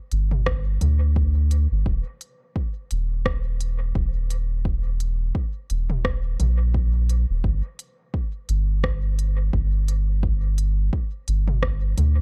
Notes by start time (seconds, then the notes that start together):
0.12 G1, closed hi-hat
0.31 mid tom
0.46 kick, cross-stick
0.81 D2, closed hi-hat, mid tom
1.16 kick
1.51 closed hi-hat
1.71 G1
1.86 D#1, kick
2.21 closed hi-hat
2.56 kick
2.91 D#1, closed hi-hat
3.25 kick, cross-stick
3.61 closed hi-hat
3.95 D#1, kick
4.30 closed hi-hat
4.65 kick
5.00 closed hi-hat
5.35 kick
5.70 D#1, closed hi-hat
5.90 mid tom
6.05 kick, cross-stick
6.40 A#1, closed hi-hat, mid tom
6.74 kick
7.09 closed hi-hat
7.29 D#1
7.44 G1, kick
7.79 closed hi-hat
8.14 kick
8.49 G1, closed hi-hat
8.84 kick, cross-stick
9.19 closed hi-hat
9.53 G1, kick
9.88 closed hi-hat
10.23 kick
10.58 closed hi-hat
10.93 kick
11.28 G1, closed hi-hat
11.48 mid tom
11.63 kick, cross-stick
11.98 D2, closed hi-hat, mid tom